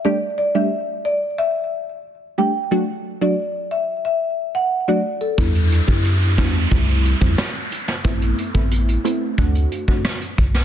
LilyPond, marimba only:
\new Staff \with { instrumentName = "Marimba" } { \time 4/4 \key d \mixolydian \tempo 4 = 90 d''16 r16 d''16 e''16 r8 d''16 r16 e''8. r8. g''16 r16 | r8. d''16 r8 e''16 r16 e''16 r8 fis''16 r16 d''16 r16 a'16 | r1 | r1 | }